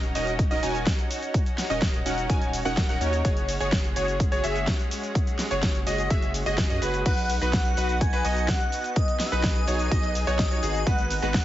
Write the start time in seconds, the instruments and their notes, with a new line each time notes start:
Already playing: sub bass D#1, analog synth pad C#4 D#4 F#4
0.03 closed hi-hat, cabasa
0.15 sub bass D#1, supersaw synth C#4 D#4 F#4 A#4 D#5, grand piano D#5, open hi-hat, cabasa
0.27 closed hi-hat, cabasa
0.39 kick, closed hi-hat, cabasa
0.51 sub bass D#1, supersaw synth C#4 D#4 F#4 A#4 D#5, grand piano D#5, closed hi-hat, cabasa
0.63 sub bass D#1, supersaw synth C#4 D#4 F#4 A#4 G#5, grand piano G#5, open hi-hat, cabasa
0.75 closed hi-hat, cabasa
0.87 kick, snare, closed hi-hat, cabasa
0.99 closed hi-hat, cabasa
1.11 open hi-hat, cabasa
1.22 closed hi-hat, cabasa
1.34 kick, closed hi-hat, cabasa
1.46 closed hi-hat, cabasa
1.58 snare, open hi-hat, cabasa
1.70 sub bass D#1, supersaw synth C#4 D#4 F#4 A#4 D#5, grand piano D#5, closed hi-hat, cabasa
1.82 kick, snare, closed hi-hat, cabasa
1.94 closed hi-hat, cabasa
2.06 sub bass D#1, supersaw synth C#4 D#4 F#4 A#4 F#5, grand piano F#5, open hi-hat, cabasa
2.18 closed hi-hat, cabasa
2.29 sub bass D#1, supersaw synth C#4 D#4 F#4 A#4 G#5, grand piano G#5, kick, closed hi-hat, cabasa
2.42 closed hi-hat, cabasa
2.53 open hi-hat, cabasa
2.65 sub bass D#1, supersaw synth C#4 D#4 F#4 A#4 F#5, grand piano F#5, closed hi-hat, cabasa
2.77 kick, snare, closed hi-hat, cabasa
2.89 sub bass D#1, supersaw synth C#4 D#4 F#4 A#4 F#5, grand piano F#5, closed hi-hat, cabasa
3.01 sub bass D#2, supersaw synth C#4 D#4 F#4 A#4 C#5, grand piano C#5, open hi-hat, cabasa
3.13 closed hi-hat, cabasa
3.25 sub bass F#1, analog synth pad G#3, supersaw synth F#4 G#4 C#5, grand piano C#5, kick, closed hi-hat, cabasa
3.37 closed hi-hat, cabasa
3.49 open hi-hat, cabasa
3.60 sub bass F#1, supersaw synth F#4 G#4 C#5, grand piano C#5, closed hi-hat, cabasa
3.72 kick, snare, closed hi-hat, cabasa
3.84 closed hi-hat, cabasa
3.96 sub bass F#1, supersaw synth F#4 G#4 C#5, grand piano C#5, open hi-hat, cabasa
4.08 closed hi-hat, cabasa
4.20 kick, closed hi-hat, cabasa
4.32 sub bass F#1, supersaw synth F#4 G#4 C#5, grand piano C#5, closed hi-hat, cabasa
4.44 sub bass F#1, supersaw synth F#4 G#4 E5, grand piano E5, open hi-hat, cabasa
4.56 closed hi-hat, cabasa
4.67 kick, snare, closed hi-hat, cabasa
4.79 closed hi-hat, cabasa
4.91 open hi-hat, cabasa
5.03 closed hi-hat, cabasa
5.15 kick, closed hi-hat, cabasa
5.27 closed hi-hat, cabasa
5.39 snare, open hi-hat, cabasa
5.51 sub bass F#1, supersaw synth F#4 G#4 C#5, grand piano C#5, closed hi-hat, cabasa
5.63 kick, snare, closed hi-hat, cabasa
5.75 closed hi-hat, cabasa
5.87 sub bass F#1, supersaw synth F#4 G#4 D#5, grand piano D#5, open hi-hat, cabasa
5.98 closed hi-hat, cabasa
6.10 sub bass F#1, supersaw synth F#4 G#4 E5, grand piano E5, kick, closed hi-hat, cabasa
6.22 closed hi-hat, cabasa
6.34 open hi-hat, cabasa
6.46 sub bass F#1, supersaw synth F#4 G#4 D#5, grand piano D#5, closed hi-hat, cabasa
6.58 kick, snare, closed hi-hat, cabasa
6.70 sub bass F#2, supersaw synth F#4 G#4 D#5, grand piano D#5, closed hi-hat, cabasa
6.82 sub bass F#1, supersaw synth F#4 G#4 B4, grand piano B4, open hi-hat, cabasa
6.94 closed hi-hat, cabasa
7.06 sub bass B1, analog synth pad B3 D#4 F#4, supersaw synth D#4 F#4 B4, grand piano B4, digital synth lead F#5, kick, closed hi-hat, crash, cabasa
7.18 closed hi-hat, cabasa
7.30 open hi-hat, cabasa
7.41 sub bass B1, supersaw synth D#4 F#4 B4, grand piano B4, closed hi-hat, cabasa
7.53 digital synth lead F#5, kick, snare, closed hi-hat, cabasa
7.65 closed hi-hat, cabasa
7.77 sub bass B1, supersaw synth D#4 F#4 B4, grand piano B4, open hi-hat, cabasa
7.89 closed hi-hat, cabasa
8.01 digital synth lead G#5, kick, closed hi-hat, cabasa
8.13 sub bass B1, supersaw synth D#4 F#4 B4, grand piano B4, closed hi-hat, cabasa
8.25 sub bass B1, supersaw synth D#4 F#4 D#5, grand piano D#5, open hi-hat, cabasa
8.37 closed hi-hat, cabasa
8.48 digital synth lead F#5, kick, snare, closed hi-hat, cabasa
8.60 closed hi-hat, cabasa
8.72 open hi-hat, cabasa
8.84 closed hi-hat, cabasa
8.96 analog synth pad G#4, digital synth lead D#5, kick, closed hi-hat, cabasa
9.08 closed hi-hat, cabasa
9.20 digital synth lead D#5, snare, open hi-hat, cabasa
9.27 digital synth lead E5
9.32 sub bass B1, supersaw synth D#4 F#4 B4, grand piano B4, digital synth lead D#5, closed hi-hat, cabasa
9.43 kick, snare, closed hi-hat, cabasa
9.56 closed hi-hat, cabasa
9.68 sub bass B1, supersaw synth D#4 F#4 C#5, grand piano C#5, open hi-hat, cabasa
9.79 closed hi-hat, cabasa
9.91 sub bass B1, supersaw synth D#4 F#4 D#5, grand piano D#5, kick, closed hi-hat, cabasa
10.03 closed hi-hat, cabasa
10.15 open hi-hat, cabasa
10.27 sub bass B1, supersaw synth D#4 F#4 C#5, grand piano C#5, closed hi-hat, cabasa
10.39 digital synth lead D#5, kick, snare, closed hi-hat, cabasa
10.51 sub bass B1, supersaw synth D#4 F#4 C#5, grand piano C#5, closed hi-hat, cabasa
10.63 sub bass G#1, supersaw synth D#4 F#4 G#4, grand piano G#4, digital synth lead D#5, open hi-hat, cabasa
10.75 closed hi-hat, cabasa
10.87 sub bass G#1, analog synth pad G#3 F#4 A#4 B4, supersaw synth G#3 B3 D#4 F#4 B4, grand piano B4, digital synth lead F#5, kick, closed hi-hat, cabasa
10.99 closed hi-hat, cabasa
11.10 open hi-hat, cabasa
11.22 sub bass G#1, supersaw synth G#3 B3 D#4 F#4 B4, grand piano B4, closed hi-hat, cabasa
11.34 digital synth lead F#5, kick, snare, closed hi-hat, cabasa